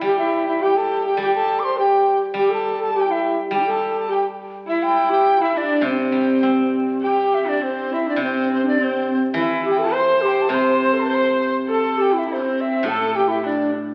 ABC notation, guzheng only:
X:1
M:2/4
L:1/8
Q:1/4=103
K:none
V:1 name="Guzheng" clef=bass
[E,G,]4 | G,4 | G,4 | G,4- |
G,2 z2 | C, G, C2- | C2 z2 | C,4 |
E,4 | C,4- | C,2 z2 | A,,4 |]